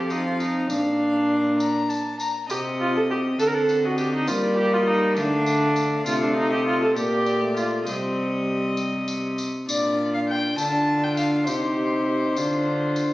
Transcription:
Already playing: F3 C4 G4 F5
0.10 D#4, tambourine
0.27 F4
0.40 D#4, tambourine
0.69 A#2 D4 F5, tambourine
1.59 A#5, tambourine
1.89 A5, tambourine
2.19 A#5, tambourine
2.49 C3 C4 G4 D#5, tambourine
2.80 F4
2.96 A4
3.10 G4
3.39 D3 C4 A4 F#5, tambourine
3.47 A#4
3.54 A4
3.69 tambourine
3.84 F#4 D#5
3.98 G4, tambourine
4.14 D#4
4.27 G3 A#3 F4 D5, tambourine
4.57 G4
4.73 F4 D#5
4.87 D#4
5.17 D3 A3 D4 F5, tambourine
5.46 tambourine
5.76 tambourine
6.06 C3 A3 F4 F5, tambourine
6.22 D4
6.36 D#4
6.50 G4 D#5
6.66 F4
6.83 A4
6.95 A#2 A#3 G4 D5, tambourine
7.26 tambourine
7.41 A3
7.57 F4, tambourine
7.86 C3 G3 C4 D#5, tambourine
8.77 tambourine
9.08 tambourine
9.38 tambourine
9.67 A#2 D4 F4 D5, tambourine
10.14 F5
10.29 G5
10.58 D3 D4 F4 A5, tambourine
11.04 G5
11.17 F5, tambourine
11.47 C3 D#4 G4 C5, tambourine
12.36 D3 D4 F4, tambourine
12.96 tambourine

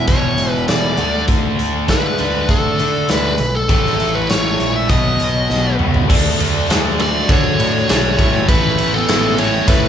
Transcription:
Already playing: E2 B2 E3
0.08 E1 E2 B2 E3 C#5, kick, closed hi-hat
0.37 E1, closed hi-hat
0.51 B4
0.68 E1 E2 B2 E3 D5, snare, closed hi-hat
0.97 D2 D3 A3 D4, closed hi-hat
1.28 D2, kick, closed hi-hat
1.58 D2, closed hi-hat
1.87 D3 A3 D4 B4, kick, snare, closed hi-hat
2.18 D2 D3 A3 D4, closed hi-hat
2.49 D2 A4, kick, closed hi-hat
2.78 D3 A3 D4, closed hi-hat
3.09 D2 B4, snare, closed hi-hat
3.38 B1, closed hi-hat
3.55 A4
3.68 A1 A2 E3 A3 A4, kick, closed hi-hat
3.86 snare
4.00 A1, closed hi-hat
4.15 B4
4.29 A1 C#5, snare, closed hi-hat
4.60 A#1 A2 E3 A3, closed hi-hat
4.76 E5
4.88 B1 B2 F#3 B3 D#5, kick, closed hi-hat
5.20 B1, closed hi-hat
5.50 B1, snare
5.77 C#2 B2 F#3 B3, mid tom
5.94 floor tom
6.08 D2 D3 F#3 A3 D4 A4, kick, crash
6.40 D2, ride
6.68 D2 D3 A3 D4, snare, ride
6.99 D3 A3 D4 F#4 D5, ride
7.29 D3 A3 D4 F#4 C#5, kick, ride
7.59 A2, ride
7.88 B1 D3 A3 D4, snare, ride
8.18 A1 A2 E3 A3 B3 C#4 A4, kick, ride
8.48 A1 A2 E3 A3 C#4 B4, kick, ride
8.78 A1, ride
8.93 B3 A4
9.08 A1 A2 E3 A3, snare, ride
9.38 A2 E3 A3 E4 C#5, ride
9.67 A2 E3 A3 C#4 B4, kick, ride

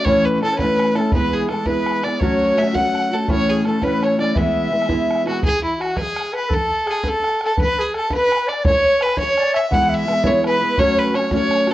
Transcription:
0.04 A2 E3 A3 C#4 E4 C#5, bodhran
0.25 B4, bodhran
0.42 E3 A3 C#4 E4 A4, bodhran
0.53 C#5
0.58 A2 E3 A3 C#4 E4 B4 C#5, bodhran
0.65 B4
0.79 bodhran
0.95 A3 C#4 E4 A4, bodhran
1.12 E3 G#3 B3 E4 B4, bodhran
1.32 G#4, bodhran
1.49 E3 G#3 B3 E4 A4, bodhran
1.66 E3 G#3 B3 E4 B4, bodhran
1.86 bodhran
2.03 G#3 B3 E4 D5, bodhran
2.20 F#3 A3 C#4 F#4 C#5, bodhran
2.41 bodhran
2.56 F#3 A3 C#4 F#4 E5, bodhran
2.68 E5
2.73 F#3 A3 C#4 F#4 F#5, bodhran
2.95 bodhran
3.11 A3 C#4 F#4 A4
3.28 A2 E3 A3 C#4 E4 C#5, bodhran
3.49 G#4, bodhran
3.65 E3 A3 C#4 E4 A4, bodhran
3.82 A2 E3 A3 C#4 E4 B4, bodhran
4.03 C#5, bodhran
4.19 A3 C#4 E4 D5, bodhran
4.35 E3 G#3 B3 E4 E5, bodhran
4.56 bodhran
4.72 E3 G#3 B3 E4
4.82 bodhran
4.89 E3 G#3 B3 E4, bodhran
5.11 bodhran
5.26 G#3 B3 E4 F#4, bodhran
5.43 G#4, bodhran
5.63 E4, bodhran
5.78 F#4, bodhran
5.90 F#4
5.97 G#4 B4, bodhran
6.02 G#4
6.16 bodhran
6.33 B4, bodhran
6.49 A4, bodhran
6.53 A4
6.70 bodhran
6.86 G#4, bodhran
6.90 G#4
7.03 B4, bodhran
7.08 A4
7.24 bodhran
7.41 A4, bodhran
7.45 A4
7.57 B4, bodhran
7.61 B4
7.78 G#4, bodhran
7.93 A4, bodhran
8.11 B4, bodhran
8.32 bodhran
8.47 D5, bodhran
8.63 C#5, bodhran
8.83 C#5, bodhran
9.00 B4, bodhran
9.09 bodhran
9.17 C#5, bodhran
9.37 D5, bodhran
9.53 E5, bodhran
9.70 E3 G#3 B3 E4 F#5, bodhran
9.82 F#5
9.89 E5, bodhran
9.94 E5
10.07 E3 G#3 B3 E4, bodhran
10.23 E3 G#3 B3 E4 C#5, bodhran
10.44 B4, bodhran
10.61 G#3 B3 E4
10.77 F#3 A3 C#4 F#4 C#5, bodhran
10.97 B4, bodhran
11.14 F#3 A3 C#4 F#4 C#5, bodhran
11.31 F#3 A3 C#4 F#4 C#5, bodhran
11.51 bodhran
11.67 C#4 F#4, bodhran

